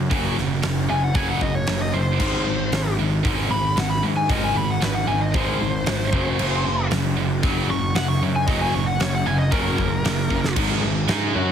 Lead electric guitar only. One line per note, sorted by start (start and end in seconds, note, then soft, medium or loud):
0.90 1.03 G#5 loud
1.04 1.15 F#5 medium
1.15 1.28 G#5 medium
1.29 1.42 F#5 medium
1.42 1.55 D#5 medium
1.55 1.67 C#5 medium
1.68 1.81 C#5 medium
1.82 1.94 D#5 medium
1.93 2.95 C5 loud
3.51 3.76 B5 loud
3.79 3.91 F#5 loud
3.90 4.02 B5 loud
4.17 4.29 G#5 medium
4.31 4.42 D#5 medium
4.44 4.56 G#5 loud
4.56 4.68 B5 medium
4.71 4.82 F#5 medium
4.82 4.94 B4 medium
4.94 5.07 F#5 medium
5.08 5.20 G#5 medium
5.21 5.33 D#5 medium
5.34 6.87 C5 loud
7.70 7.95 C#6 loud
7.95 8.08 F#5 medium
8.08 8.21 C#6 loud
8.36 8.48 G#5 medium
8.46 8.60 D#5 loud
8.61 8.73 G#5 loud
8.74 8.87 C#6 loud
8.86 8.99 F#5 loud
9.01 9.13 C#5 loud
9.15 9.26 F#5 medium
9.26 9.39 G#5 loud
9.38 9.51 D#5 loud
9.52 10.53 A#4 loud